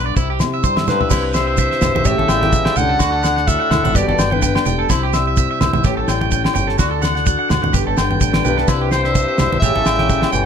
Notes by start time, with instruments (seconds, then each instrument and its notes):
Already playing: fingered electric bass B1, nylon-string guitar G2 D3 B3 D4
0.06 clean electric guitar D5
0.17 fingered electric bass C2, nylon-string guitar C3, clean electric guitar E4, kick, shekere
0.30 clean electric guitar G4
0.40 fingered electric bass C3, nylon-string guitar E4, snare, high conga, low agogo, shekere
0.54 clean electric guitar E5
0.64 fingered electric bass G2, nylon-string guitar G3, clean electric guitar C5, kick, shekere
0.76 clean electric guitar E5, snare, high conga, low agogo
0.87 trombone G2, nylon-string guitar E3, clarinet B4, clean electric guitar C5, snare, high conga, low conga, shekere
1.00 clean electric guitar E5, floor tom
1.10 fingered electric bass C2, nylon-string guitar C3, tonewheel organ C4 E4 G4, clean electric guitar E4, kick, snare, crash, low agogo, shekere
1.23 muted clean electric guitar stroke
1.34 trombone G2, nylon-string guitar G3, clarinet C5, clean electric guitar E5, snare, low agogo, shekere
1.47 clean electric guitar E5
1.57 nylon-string guitar C3, clean electric guitar E5, kick, shekere
1.71 clean electric guitar E5, snare
1.81 fingered electric bass C2, nylon-string guitar B2, clean electric guitar E5, snare, low conga, low agogo, shekere
1.94 fingered electric bass B1, clean electric guitar E5, high conga, low conga
2.05 fingered electric bass A1, nylon-string guitar A2, trombone C#3, tonewheel organ C#4 G4 A4, clean electric guitar G4, clarinet E5, kick, shekere
2.18 fingered electric bass A1, clean electric guitar A4, high conga
2.28 fingered electric bass A1, nylon-string guitar G3, clean electric guitar G5, snare, low agogo, shekere
2.41 clean electric guitar G5, snare, high conga
2.53 nylon-string guitar B2, kick, shekere
2.65 clean electric guitar G5, snare, low agogo
2.76 fingered electric bass C#2, nylon-string guitar C#3, trombone D3, clarinet F#5, clean electric guitar G5, low conga, shekere
2.89 clean electric guitar A4
2.99 fingered electric bass D2, tonewheel organ D4 F#4, clean electric guitar F#4, muted nylon-string guitar stroke, kick, snare, low agogo, shekere
3.12 clean electric guitar A4
3.23 nylon-string guitar D4, clean electric guitar F#5, snare, low agogo, shekere
3.36 clean electric guitar F#5, snare
3.47 trombone A2, nylon-string guitar F#4, clarinet E5, clean electric guitar F#5, kick, shekere
3.60 clean electric guitar F#5
3.71 fingered electric bass D2, nylon-string guitar E4, clean electric guitar F#5, snare, low conga, low agogo, shekere
3.84 fingered electric bass A1, nylon-string guitar F#4, clean electric guitar F#5, high conga, low conga
3.95 fingered electric bass G1, nylon-string guitar G2, trombone B2, tonewheel organ B3 G4, clean electric guitar G4, clarinet D5, kick, snare, shekere
4.08 fingered electric bass G1, clean electric guitar A4, high conga
4.18 fingered electric bass G1, nylon-string guitar B3, clean electric guitar G5, snare, low agogo, shekere
4.31 trombone G2, clarinet B4, clean electric guitar G5, high conga
4.42 nylon-string guitar D4, clean electric guitar G5, kick, shekere
4.55 clean electric guitar G5, snare, low agogo
4.66 fingered electric bass E1, nylon-string guitar G4, clean electric guitar G5, low conga, shekere
4.79 clean electric guitar A4
4.89 fingered electric bass C2, nylon-string guitar C3, tonewheel organ C4 E4 G4, clean electric guitar E4, kick, snare, low agogo, shekere
5.03 clean electric guitar G4
5.13 nylon-string guitar G3, clean electric guitar E5, snare, low agogo, shekere
5.27 clean electric guitar E5
5.37 nylon-string guitar C4, clean electric guitar E5, kick, shekere
5.51 clean electric guitar E5
5.61 fingered electric bass C2, nylon-string guitar E4, clean electric guitar E5, snare, low conga, low agogo, shekere
5.73 fingered electric bass B1, clean electric guitar E5, high conga, low conga
5.84 fingered electric bass A1, nylon-string guitar A2, tonewheel organ C#4 A4, clean electric guitar G4, kick, snare, shekere
5.97 fingered electric bass A1, clean electric guitar A4
6.08 fingered electric bass A1, nylon-string guitar G3, clean electric guitar G5, snare, low agogo, shekere
6.21 clean electric guitar G5, high conga
6.32 nylon-string guitar C#4, clean electric guitar G5, kick, shekere
6.44 clean electric guitar G5, snare, low agogo
6.55 fingered electric bass G1, nylon-string guitar G4, clean electric guitar G5, low conga, shekere
6.67 clean electric guitar A4, snare
6.79 fingered electric bass D2, nylon-string guitar D3, tonewheel organ D4 F#4, clean electric guitar F#4, kick, snare, low agogo, shekere
6.91 clean electric guitar A4
7.02 nylon-string guitar D4, clean electric guitar F#5, snare, high conga, low agogo, shekere
7.15 clean electric guitar F#5, snare
7.26 nylon-string guitar F#4, clean electric guitar F#5, kick, shekere
7.39 clean electric guitar F#5
7.49 fingered electric bass D2, nylon-string guitar F#4, clean electric guitar F#5, snare, low conga, low agogo, shekere
7.63 fingered electric bass D2, clean electric guitar F#5, high conga, low conga
7.73 fingered electric bass G1, nylon-string guitar G2, tonewheel organ B3 G4 A4, clean electric guitar G4, kick, shekere
7.87 fingered electric bass G1, clean electric guitar A4
7.97 fingered electric bass G1, nylon-string guitar B3, clean electric guitar G5, snare, low agogo, shekere
8.11 clean electric guitar G5, high conga
8.21 fingered electric bass A1, nylon-string guitar D4, clean electric guitar G5, kick, shekere
8.34 clean electric guitar G5, snare, high conga, low agogo
8.44 fingered electric bass B1, trombone G2, nylon-string guitar G4, clarinet B4, clean electric guitar G5, low conga, shekere
8.57 clean electric guitar A4, snare
8.68 fingered electric bass C2, nylon-string guitar C3, tonewheel organ C4 E4, clean electric guitar E4, kick, snare, low agogo, shekere
8.81 clean electric guitar G4
8.91 trombone G2, nylon-string guitar G3, clarinet C5, clean electric guitar G5, snare, low agogo, shekere
9.04 clean electric guitar E5, snare
9.15 clean electric guitar E5, kick, shekere
9.28 clean electric guitar E5
9.38 fingered electric bass C2, nylon-string guitar B2, clean electric guitar E5, snare, low conga, low agogo, shekere
9.52 fingered electric bass B1, clean electric guitar E5, high conga, low conga
9.60 fingered electric bass A1, nylon-string guitar A2, trombone C#3, tonewheel organ C#4 A4, clean electric guitar G4, clarinet E5, kick, shekere
9.76 fingered electric bass A1, clean electric guitar A4, high conga
9.86 fingered electric bass A1, nylon-string guitar G3, clean electric guitar G5, snare, low agogo, shekere
9.99 clean electric guitar G5, snare, high conga
10.10 nylon-string guitar C#4, clean electric guitar G5, kick, shekere
10.22 clean electric guitar G5, snare, low agogo
10.32 fingered electric bass G1, trombone E3, nylon-string guitar G4, clarinet G5, clean electric guitar G5, low conga, shekere